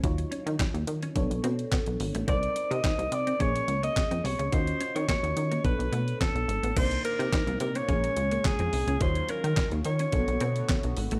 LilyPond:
<<
  \new Staff \with { instrumentName = "Alto saxophone" } { \time 4/4 \key ees \mixolydian \tempo 4 = 107 r1 | d''8. ees''8. d''8 des''8. ees''8. des''8 | c''8. des''16 des''4 b'4 a'4 | c''8 bes'4 bes'16 des''4~ des''16 aes'4 |
c''8 bes'4 des''2 r8 | }
  \new Staff \with { instrumentName = "FM electric piano" } { \time 4/4 \key ees \mixolydian <ges ees' f' des''>2 <b d' a' cis''>2 | <c' ees' bes' c''>2 <bes des' aes' des''>2 | <des' f' ges' ees''>2 <b d' a' cis''>2 | <bes d' ees' c''>2 <bes des' aes' des''>2 |
<ges ees' f' des''>2 <b d' a' cis''>2 | }
  \new Staff \with { instrumentName = "Clean electric guitar" } { \time 4/4 \key ees \mixolydian r8 des'16 ees'16 ees'16 r8 des'16 r8 c'16 r16 b16 r8 a16 | c'16 r8 ees'16 ees'16 r8 c'16 des'16 r8 bes16 r16 c'16 r16 des'16 | r8 des'16 c'16 bes16 r8 bes16 r8 a16 r16 c'16 r8 b16 | c'16 r8 ees'16 ees'16 r8 c'16 des'16 r8 bes16 r16 c'16 r16 des'16 |
r8 des'16 ees'16 ees'16 r8 des'16 r8 c'16 r16 b16 r8 a16 | }
  \new Staff \with { instrumentName = "Analog synth pad" } { \time 4/4 \key ees \mixolydian << { r1 | r1 | r1 | <ees d''>2 <aes des'>2 |
<ges f'>2 <a fis'>2 | } \\ { r1 | r1 | r1 | <bes, bes>1 |
ees2 <d b>2 | } >> }
  \new Staff \with { instrumentName = "Analog synth bass" } { \clef bass \time 4/4 \key ees \mixolydian ees,8 r16 ees16 r16 ees,16 ees8 b,,16 b,,16 b,8 r16 b,,16 aes,,16 a,,16 | c,8 r16 c16 r16 c,16 c8 bes,,8 des,8 r16 f,16 c,16 des,16 | ees,8 r16 ees16 r16 ees,16 ees8 b,,16 b,,16 b,8 r16 b,,16 aes,,16 a,,16 | c,8 r16 c16 r16 c,16 c8 bes,,8 des,8 r16 f,16 c,16 des,16 |
ees,8 r16 ees16 r16 ees,16 ees8 b,,16 b,,16 b,8 r16 b,,16 aes,,16 a,,16 | }
  \new DrumStaff \with { instrumentName = "Drums" } \drummode { \time 4/4 <hh bd>16 hh16 hh16 hh16 <hc hh bd sn>16 hh16 hh16 hh16 <hh bd>16 hh16 hh16 hh16 <hc hh bd sn>16 hh16 hho16 hh16 | <hh bd>16 hh16 hh16 hh16 <hc hh bd sn>16 hh16 hh16 hh16 <hh bd>16 hh16 hh16 hh16 <hc hh bd sn>16 hh16 hho16 hh16 | <hh bd>16 hh16 hh16 hh16 <hc hh bd sn>16 hh16 hh16 hh16 <hh bd>16 hh16 hh16 hh16 <hc hh bd sn>16 hh16 hh16 hh16 | <cymc hh bd>16 hh16 hh16 hh16 <hc hh bd sn>16 hh16 hh16 hh16 <hh bd>16 hh16 hh16 hh16 <hc hh bd sn>16 hh16 hho16 hh16 |
<hh bd>16 hh16 hh16 hh16 <hc hh bd sn>16 hh16 hh16 hh16 <hh bd>16 hh16 hh16 hh16 <hc hh bd sn>16 hh16 hho16 hh16 | }
>>